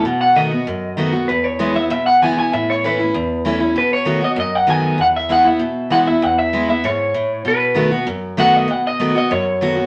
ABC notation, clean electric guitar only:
X:1
M:4/4
L:1/8
Q:1/4=194
K:E
V:1 name="Clean electric guitar"
f f d4 z2 | B c2 e e f g g | e c B4 z2 | B c2 d d f g2 |
f e f e3 f e | f e2 e c4 | B3 z3 f d | f d2 d c4 |]